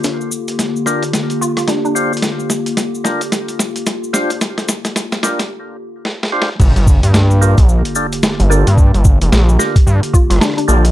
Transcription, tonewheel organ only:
X:1
M:4/4
L:1/16
Q:"Swing 16ths" 1/4=110
K:Gm
V:1 name="Tonewheel organ"
z6 [DFGB] z6 z [DFGc] z | z6 [DFGB] z6 z [DFGc] z | z6 [DFGB] z6 z [DFGc] z | z6 [DFGB] z3 [DFGA]2 z2 [DFGA] z |
z6 [DFGB] z6 z [DFGA] z |]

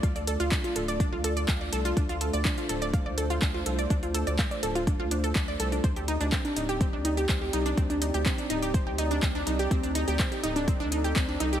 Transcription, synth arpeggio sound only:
X:1
M:4/4
L:1/16
Q:1/4=124
K:Dphr
V:1 name="Synth arpeggio sound"
f d A F D F A d D F A d f d A F | D F A d D F A d f d A F D F A d | D F A d f d A F D F D A D d A D | c G E D C D E G C D E G c G E D |
C D E G C D E G c G E D C D E G | C D E G c G E D C D E G C D E G |]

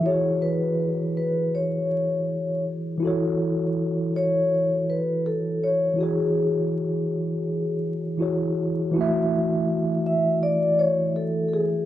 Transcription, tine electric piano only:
X:1
M:4/4
L:1/8
Q:"Swing 16ths" 1/4=81
K:E
V:1 name="Tine electric piano"
[E,EFGc]8 | [E,EFAc]8 | [E,EFGc]6 [E,EFGc]2 | [E,A,EFe]8 |]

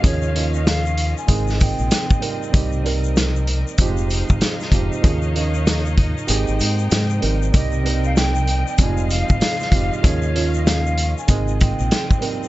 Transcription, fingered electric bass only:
X:1
M:4/4
L:1/16
Q:"Swing 16ths" 1/4=96
K:Fm
V:1 name="Fingered electric bass" clef=bass
E,,6- E,, z A,,,3 B,,, z4 | C,,6- C,, z F,,,3 A,,, z2 F,,, z | E,,6- E,, z A,,, A,,, A,,2 A,,2 A,,,2 | C,,6- C,, z F,,,3 A,,, z2 F,,, z |
E,,6- E,, z A,,,3 B,,, z4 |]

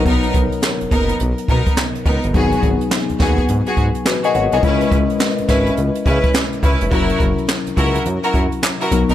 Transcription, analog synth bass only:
X:1
M:4/4
L:1/16
Q:"Swing 16ths" 1/4=105
K:F#mix
V:1 name="Analog synth bass" clef=bass
B,,,2 B,,, z2 F,,, F,,,2 B,,, z B,, z3 C,, =G,,, | G,,,2 G,,, z2 D,, D,,2 G,, z G,, z3 G,,, ^B,,, | C,,2 C,, z2 G,,, G,,,2 C,, z C, z3 C,, ^E,,, | F,,,2 F,,, z2 C,, C,,2 F,, z F,, z3 B,,, A,,, |]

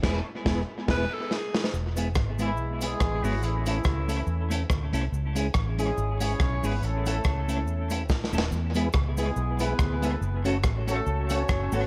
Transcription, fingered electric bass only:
X:1
M:4/4
L:1/8
Q:"Swing" 1/4=141
K:E
V:1 name="Fingered electric bass" clef=bass
E,,, z E,,, z E,,, z3 | E,,,2 G,,,2 B,,,2 A,,, G,,, | A,,,2 C,,2 E,,2 =D,, =C,, | C,,2 A,,,2 G,,,2 B,,, G,,, |
A,,,2 C,,2 E,,2 B,,, D,,, | E,,2 C,,2 B,,,2 =D,,2 | F,,,2 A,,,2 C,,2 F,,, G,,, |]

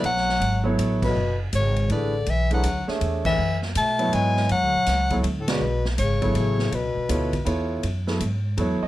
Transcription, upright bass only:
X:1
M:3/4
L:1/8
Q:"Swing" 1/4=162
K:Bdor
V:1 name="Upright bass" clef=bass
B,,,2 G,,,2 A,,,2 | F,,,2 G,,,2 A,,,2 | B,,,2 D,, z E,,2 | F,,2 B,,2 G,,2 |
(3F,, D,, B,,, C,,2 D,,2 | B,,,2 G,,,2 A,,,2 | C,, z D,,2 E,,2 | [K:F#dor] F,,2 G,,2 E,, z |]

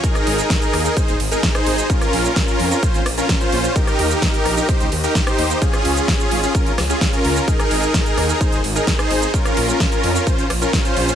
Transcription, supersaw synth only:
X:1
M:4/4
L:1/16
Q:1/4=129
K:Ab
V:1 name="Supersaw synth"
[EAB]6- [EAB] [EAB] [EAc] z2 [EAB] [EAB] [EAc]3 | [DFB]6- [DFB] [DFB] [DFc] z2 [DFB] [DFB] [DFc]3 | [EGB]6- [EGB] [EGB] [EGc] z2 [EGB] [EGB] [EGc]3 | [DFA]6- [DFA] [DFA] [DFB] z2 [DFA] [DFA] [DFB]3 |
[EAB]6- [EAB] [EAB] [EAc] z2 [EAB] [EAB] [EAc]3 | [DFB]6- [DFB] [DFB] [DFc] z2 [DFB] [DFB] [DFc]3 |]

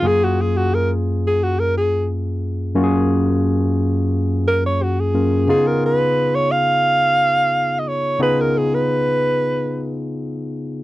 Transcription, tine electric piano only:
X:1
M:4/4
L:1/8
Q:1/4=88
K:C#mix
V:1 name="Tine electric piano"
[F,,A,CEG]8 | [F,,A,CEFG]6- [F,,A,CEFG] [F,,A,CEA] | [C,B,DEG]8 | [C,B,DEG]8 |]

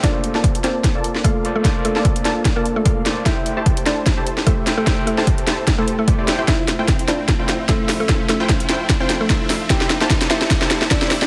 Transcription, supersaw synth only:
X:1
M:4/4
L:1/16
Q:"Swing 16ths" 1/4=149
K:Bblyd
V:1 name="Supersaw synth"
[B,FAdf]3 [B,FAda]3 [B,FAda]3 [B,FAda]3 [B,FAdf]4 | [B,FAdf]3 [B,FAda]3 [B,FAda]3 [B,FAda]3 [B,FAdf]4 | [A,EGce]3 [A,EGca]3 [A,EGca]3 [A,EGca]3 [A,EGce]4 | [A,EGce]3 [A,EGca]3 [A,EGca]3 [A,EGca]3 [A,EGcd] [A,EGcd]2 [A,EGcg] |
[A,Ee]3 [A,EFcg]3 [A,EFcg]3 [A,EFcg]3 [A,EFce]4 | [A,EFce]3 [A,EFcg]3 [A,EFcg]3 [A,EFcg]3 [A,EFce]4 | [B,EGce]3 [B,EGca]3 [B,EGca]3 [B,EGca]3 [B,EGce]4 |]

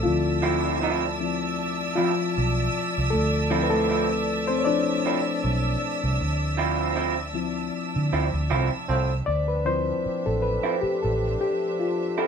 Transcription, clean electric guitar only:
X:1
M:4/4
L:1/16
Q:"Swing 16ths" 1/4=78
K:Dm
V:1 name="Clean electric guitar"
z2 [F,CE]2 [F,CE] z4 z [F,CE] z4 z | z2 [F,CE]2 [F,CE] z4 z [F,CE] z4 z | z2 [F,CE]2 [F,CE] z4 z [F,CE] z [F,CE] z3 | z6 z [F,CE] z6 z [F,CE] |]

